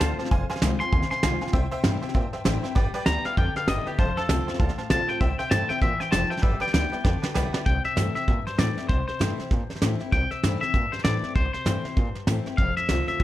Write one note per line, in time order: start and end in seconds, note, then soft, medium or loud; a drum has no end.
0.00 0.13 D2 medium
0.00 0.29 A2 loud
0.00 0.18 D3 medium
0.00 0.18 A3 medium
0.00 0.19 C4 medium
0.00 0.18 F4 loud
0.00 0.11 C5 loud
0.00 0.17 C5 loud
0.00 0.11 F5 loud
0.00 0.11 A5 loud
0.00 snare loud
0.00 hi-hat pedal medium
0.18 0.31 C4 medium
0.18 0.31 F4 medium
0.18 0.26 C5 medium
0.18 0.26 F5 medium
0.18 0.26 A5 loud
0.18 muted upright bass stroke medium
0.18 snare soft
0.25 snare soft
0.31 0.44 F1 loud
0.31 0.90 F2 loud
0.31 0.42 C5 loud
0.31 0.42 F5 loud
0.31 0.42 G#5 loud
0.31 kick loud
0.31 snare soft
0.50 0.57 C5 loud
0.50 0.57 F5 loud
0.50 0.57 G#5 loud
0.50 snare soft
0.56 snare soft
0.62 0.74 C2 loud
0.62 0.80 D#3 medium
0.62 0.80 G#3 medium
0.62 0.80 C4 loud
0.62 0.79 F4 loud
0.62 0.73 C5 medium
0.62 0.73 F5 medium
0.62 0.73 G#5 loud
0.62 snare loud
0.62 hi-hat pedal medium
0.80 0.93 C4 soft
0.80 0.92 F4 medium
0.80 0.88 C5 medium
0.80 0.88 F5 medium
0.80 0.88 G#5 medium
0.80 1.10 C6 loud
0.80 snare soft
0.92 1.05 D#2 medium
0.92 1.51 C3 loud
0.92 1.03 C5 medium
0.92 1.03 F5 medium
0.92 1.04 G#5 medium
0.92 kick loud
0.92 snare soft
1.02 snare soft
1.10 1.18 C5 medium
1.10 1.18 F5 medium
1.10 1.18 G#5 medium
1.10 2.00 C6 loud
1.10 muted upright bass stroke medium
1.10 snare soft
1.23 1.35 B1 medium
1.23 1.41 D#3 medium
1.23 1.41 G#3 medium
1.23 1.41 C4 medium
1.23 1.40 F4 loud
1.23 1.34 C5 medium
1.23 1.34 F5 medium
1.23 1.34 G#5 loud
1.23 snare loud
1.23 hi-hat pedal medium
1.41 1.54 C4 medium
1.41 1.53 F4 medium
1.41 1.49 C5 medium
1.41 1.49 F5 medium
1.41 1.49 G#5 medium
1.41 muted upright bass stroke medium
1.41 snare soft
1.47 snare soft
1.53 1.66 C2 loud
1.53 2.12 C3 medium
1.53 1.64 C5 loud
1.53 1.64 E5 loud
1.53 1.65 G5 loud
1.53 kick loud
1.53 snare soft
1.71 1.79 C5 loud
1.71 1.79 E5 loud
1.71 1.79 G5 loud
1.71 snare soft
1.83 1.97 G2 medium
1.83 2.01 E3 medium
1.83 2.02 A3 medium
1.83 2.02 C4 medium
1.83 2.01 E4 medium
1.83 1.95 C5 medium
1.83 1.95 E5 medium
1.83 1.95 G5 medium
1.83 snare loud
1.83 hi-hat pedal medium
2.02 2.15 C4 medium
2.02 2.14 E4 medium
2.02 2.09 C5 medium
2.02 2.10 E5 medium
2.02 2.10 G5 loud
2.02 muted upright bass stroke medium
2.02 snare soft
2.09 snare soft
2.14 2.73 G2 loud
2.14 2.27 A#2 loud
2.14 2.26 C5 medium
2.14 2.26 E5 medium
2.14 2.26 G5 loud
2.14 kick loud
2.14 snare soft
2.33 2.40 C5 medium
2.33 2.40 E5 medium
2.33 2.41 G5 medium
2.33 muted upright bass stroke medium
2.33 snare soft
2.44 2.58 A1 medium
2.44 2.62 E3 medium
2.44 2.63 A3 medium
2.44 2.63 C4 medium
2.44 2.62 E4 medium
2.44 2.56 C5 loud
2.44 2.57 E5 loud
2.44 2.57 G5 loud
2.44 snare loud
2.44 hi-hat pedal medium
2.63 2.76 C4 medium
2.63 2.75 E4 medium
2.63 2.71 C5 medium
2.63 2.71 E5 medium
2.63 2.71 G5 medium
2.63 snare soft
2.75 2.88 G1 medium
2.75 3.05 G3 medium
2.75 2.87 B4 loud
2.75 2.87 D5 loud
2.75 2.87 G5 loud
2.75 kick loud
2.75 snare soft
2.94 3.01 B4 loud
2.94 3.02 D5 loud
2.94 3.02 G5 loud
2.94 muted upright bass stroke medium
2.94 snare soft
3.06 3.19 D2 loud
3.06 3.24 G3 medium
3.06 3.25 B3 medium
3.06 3.25 E4 loud
3.06 3.18 B4 medium
3.06 3.18 D5 medium
3.06 3.18 G5 medium
3.06 3.24 A#5 loud
3.06 snare loud
3.06 hi-hat pedal medium
3.25 3.38 B3 medium
3.25 3.37 E4 medium
3.25 3.32 B4 medium
3.25 3.32 D5 medium
3.25 3.37 F5 medium
3.25 3.33 G5 medium
3.25 muted upright bass stroke medium
3.25 snare soft
3.37 3.50 F2 medium
3.37 3.96 D3 loud
3.37 3.48 B4 medium
3.37 3.48 D5 medium
3.37 3.49 G5 medium
3.37 3.56 G5 medium
3.37 kick loud
3.37 snare soft
3.55 3.63 B4 medium
3.55 3.63 D5 medium
3.55 3.68 F5 medium
3.55 3.63 G5 medium
3.55 muted upright bass stroke medium
3.55 snare soft
3.68 3.80 G1 loud
3.68 3.86 G3 medium
3.68 3.86 B3 medium
3.68 3.86 E4 medium
3.68 3.79 B4 medium
3.68 3.79 D5 medium
3.68 3.86 D#5 loud
3.68 3.79 G5 medium
3.68 snare loud
3.68 hi-hat pedal medium
3.86 3.99 B3 soft
3.86 3.98 E4 medium
3.86 3.99 G4 medium
3.86 3.93 B4 medium
3.86 3.94 D5 medium
3.86 3.94 G5 medium
3.86 snare soft
3.98 4.11 F1 loud
3.98 4.58 F2 medium
3.98 4.09 C5 loud
3.98 4.17 C5 medium
3.98 4.10 F5 medium
3.98 4.10 A5 loud
3.98 kick loud
3.98 snare soft
4.16 4.76 A4 loud
4.16 4.24 C5 loud
4.16 4.24 F5 medium
4.16 4.25 A5 loud
4.16 muted upright bass stroke medium
4.16 snare soft
4.29 4.41 C2 loud
4.29 4.47 D3 medium
4.29 4.47 A3 medium
4.29 4.48 C4 loud
4.29 4.47 F4 loud
4.29 4.40 C5 medium
4.29 4.40 A5 medium
4.29 snare loud
4.29 hi-hat pedal medium
4.47 4.60 C4 medium
4.47 4.59 F4 medium
4.47 4.55 C5 medium
4.47 4.55 F5 medium
4.47 4.55 A5 medium
4.47 muted upright bass stroke medium
4.47 snare soft
4.54 snare soft
4.59 4.72 D2 medium
4.59 5.19 A2 loud
4.59 4.70 C5 medium
4.59 4.71 F5 medium
4.59 4.71 A5 loud
4.59 kick loud
4.59 snare soft
4.69 snare soft
4.78 4.85 C5 medium
4.78 4.85 F5 medium
4.78 4.86 A5 medium
4.78 muted upright bass stroke medium
4.78 snare soft
4.90 5.02 A#1 medium
4.90 5.08 D3 medium
4.90 5.08 A3 medium
4.90 5.08 C4 medium
4.90 5.07 F4 loud
4.90 5.01 C5 medium
4.90 5.01 F5 medium
4.90 5.08 A5 loud
4.90 5.02 A5 loud
4.90 snare loud
4.90 hi-hat pedal medium
5.08 5.21 C4 medium
5.08 5.20 F4 medium
5.08 5.16 C5 medium
5.08 5.16 F5 medium
5.08 5.20 G5 medium
5.08 5.16 A5 medium
5.08 muted upright bass stroke medium
5.08 snare soft
5.20 5.33 C2 medium
5.20 5.79 C3 medium
5.20 5.32 C5 loud
5.20 5.39 E5 loud
5.20 5.32 E5 medium
5.20 5.32 G5 loud
5.20 kick loud
5.20 snare soft
5.39 5.46 C5 loud
5.39 5.47 E5 loud
5.39 5.51 G5 medium
5.39 5.47 G5 loud
5.39 muted upright bass stroke medium
5.39 snare soft
5.51 5.64 G2 loud
5.51 5.69 E3 medium
5.51 5.69 A3 loud
5.51 5.70 C4 loud
5.51 5.69 E4 medium
5.51 5.62 C5 medium
5.51 5.62 E5 medium
5.51 5.63 G5 medium
5.51 5.69 A5 medium
5.51 snare loud
5.51 hi-hat pedal medium
5.69 5.82 C4 soft
5.69 5.82 E4 medium
5.69 5.77 C5 medium
5.69 5.77 E5 medium
5.69 5.81 G5 loud
5.69 5.77 G5 medium
5.69 muted upright bass stroke medium
5.69 snare soft
5.81 5.94 A#2 loud
5.81 6.12 E3 medium
5.81 5.93 C5 medium
5.81 5.93 E5 medium
5.81 6.00 E5 loud
5.81 5.93 G5 medium
5.81 kick loud
5.81 snare soft
6.00 6.08 C5 medium
6.00 6.08 E5 medium
6.00 6.12 G5 medium
6.00 6.08 G5 medium
6.00 muted upright bass stroke medium
6.00 snare soft
6.11 6.25 F1 loud
6.11 6.42 F3 medium
6.11 6.23 C5 loud
6.11 6.23 E5 medium
6.11 6.23 G5 loud
6.11 6.30 A5 loud
6.11 snare loud
6.11 hi-hat pedal medium
6.30 6.38 C5 medium
6.30 6.38 E5 medium
6.30 6.43 G5 medium
6.30 6.38 A5 medium
6.30 snare soft
6.37 snare soft
6.42 6.56 G1 medium
6.42 6.72 G3 medium
6.42 6.54 B4 loud
6.42 6.54 D5 medium
6.42 6.61 E5 loud
6.42 6.54 G5 loud
6.42 kick loud
6.42 snare soft
6.60 6.68 B4 loud
6.60 6.69 D5 loud
6.60 6.69 G5 loud
6.60 6.72 G5 medium
6.60 muted upright bass stroke medium
6.60 snare soft
6.68 snare soft
6.73 6.86 D2 loud
6.73 6.92 G3 medium
6.73 6.92 B3 medium
6.73 6.90 E4 medium
6.73 6.85 B4 medium
6.73 6.85 D5 medium
6.73 7.33 G5 medium
6.73 6.85 G5 medium
6.73 snare loud
6.73 hi-hat pedal medium
6.92 7.05 B3 medium
6.92 7.04 E4 medium
6.92 6.99 B4 medium
6.92 7.00 D5 medium
6.92 7.00 G5 medium
6.92 muted upright bass stroke medium
6.92 snare soft
7.04 7.17 F2 loud
7.04 7.64 D3 loud
7.04 7.15 B4 medium
7.04 7.16 D5 medium
7.04 7.16 G5 medium
7.04 kick loud
7.04 snare medium
7.22 7.30 B4 medium
7.22 7.30 D5 medium
7.22 7.30 G5 loud
7.22 muted upright bass stroke medium
7.22 snare medium
7.34 7.48 B1 loud
7.34 7.53 G3 medium
7.34 7.53 B3 medium
7.34 7.52 E4 medium
7.34 7.46 B4 loud
7.34 7.46 D5 loud
7.34 7.46 G5 loud
7.34 snare medium
7.34 hi-hat pedal medium
7.53 7.66 B3 medium
7.53 7.65 E4 medium
7.53 7.61 B4 medium
7.53 7.61 D5 medium
7.53 7.61 G5 medium
7.53 snare medium
7.66 7.78 C2 medium
7.66 8.26 C3 medium
7.66 7.85 G5 medium
7.66 kick loud
7.66 snare soft
7.85 8.14 E5 medium
7.85 snare soft
7.96 8.09 G2 medium
7.96 8.14 E3 medium
7.96 8.15 A3 medium
7.96 8.15 C4 medium
7.96 8.14 E4 medium
7.96 snare loud
7.96 hi-hat pedal medium
8.15 8.28 C4 soft
8.15 8.27 E4 medium
8.15 8.44 E5 medium
8.15 muted upright bass stroke medium
8.15 snare soft
8.28 8.87 G2 medium
8.28 8.40 A#2 medium
8.28 kick loud
8.28 snare soft
8.46 8.58 C5 medium
8.46 muted upright bass stroke medium
8.46 snare soft
8.58 8.71 A2 medium
8.58 8.76 E3 medium
8.58 8.76 A3 medium
8.58 8.76 C4 medium
8.58 8.76 E4 medium
8.58 8.88 D5 medium
8.58 snare loud
8.58 hi-hat pedal medium
8.77 8.89 C4 soft
8.77 8.89 E4 medium
8.77 muted upright bass stroke medium
8.77 snare soft
8.89 9.02 C2 medium
8.89 9.48 C3 medium
8.89 9.06 C5 medium
8.89 kick loud
8.89 snare soft
9.08 9.96 C5 medium
9.08 muted upright bass stroke medium
9.08 snare soft
9.19 9.32 G2 loud
9.19 9.37 E3 medium
9.19 9.38 A3 medium
9.19 9.38 C4 loud
9.19 9.36 E4 medium
9.19 snare loud
9.19 hi-hat pedal medium
9.37 9.51 C4 soft
9.37 9.50 E4 medium
9.37 muted upright bass stroke medium
9.37 snare soft
9.51 10.10 G2 loud
9.51 9.63 A#2 medium
9.51 kick loud
9.51 snare soft
9.70 muted upright bass stroke medium
9.70 snare soft
9.76 snare soft
9.81 9.94 A2 medium
9.81 9.99 E3 medium
9.81 9.99 A3 medium
9.81 10.00 C4 medium
9.81 9.98 E4 medium
9.81 snare loud
9.81 hi-hat pedal medium
10.00 10.12 C4 medium
10.00 10.12 E4 medium
10.00 muted upright bass stroke medium
10.00 snare soft
10.12 10.25 C2 loud
10.12 10.72 C3 medium
10.12 10.31 G5 medium
10.12 kick loud
10.12 snare soft
10.31 10.60 E5 medium
10.31 muted upright bass stroke medium
10.31 snare soft
10.43 10.56 G2 medium
10.43 10.61 E3 medium
10.43 10.61 A3 medium
10.43 10.61 C4 medium
10.43 10.61 E4 medium
10.43 snare loud
10.43 hi-hat pedal medium
10.61 10.74 C4 soft
10.61 10.73 E4 medium
10.61 10.93 E5 medium
10.61 muted upright bass stroke medium
10.61 snare soft
10.74 11.34 G2 medium
10.74 10.86 A#2 medium
10.74 kick loud
10.74 snare soft
10.92 11.03 C5 medium
10.92 muted upright bass stroke medium
10.92 snare soft
10.99 snare soft
11.04 11.17 A2 medium
11.04 11.22 E3 medium
11.04 11.23 A3 medium
11.04 11.23 C4 medium
11.04 11.21 E4 medium
11.04 11.33 D5 medium
11.04 snare loud
11.04 hi-hat pedal medium
11.22 11.35 C4 medium
11.22 11.35 E4 medium
11.22 muted upright bass stroke medium
11.22 snare soft
11.35 11.48 C2 medium
11.35 11.95 C3 medium
11.35 11.52 C5 medium
11.35 kick loud
11.35 snare soft
11.53 12.42 C5 medium
11.53 muted upright bass stroke medium
11.53 snare soft
11.65 11.78 G2 medium
11.65 11.84 E3 medium
11.65 11.84 A3 medium
11.65 11.84 C4 medium
11.65 11.82 E4 medium
11.65 snare loud
11.65 hi-hat pedal medium
11.84 11.97 C4 soft
11.84 11.96 E4 medium
11.84 muted upright bass stroke medium
11.84 snare soft
11.97 12.56 G2 medium
11.97 12.09 A#2 medium
11.97 kick loud
11.97 snare soft
12.15 muted upright bass stroke medium
12.15 snare soft
12.27 12.40 A2 medium
12.27 12.46 E3 medium
12.27 12.46 A3 medium
12.27 12.46 C4 medium
12.27 12.45 E4 medium
12.27 snare loud
12.27 hi-hat pedal medium
12.46 12.59 C4 soft
12.46 12.58 E4 medium
12.46 muted upright bass stroke medium
12.46 snare soft
12.57 12.71 F1 medium
12.57 13.18 F2 medium
12.57 12.76 F5 loud
12.57 kick loud
12.57 snare soft
12.77 13.07 E5 medium
12.77 snare soft
12.89 13.02 C2 medium
12.89 13.19 D3 medium
12.89 13.19 A3 medium
12.89 13.20 C4 medium
12.89 13.20 F4 loud
12.89 snare loud
12.89 hi-hat pedal medium
13.08 13.23 E5 medium
13.08 muted upright bass stroke medium
13.08 snare soft
13.20 13.23 D2 medium
13.20 13.23 A2 medium
13.20 kick loud
13.20 snare soft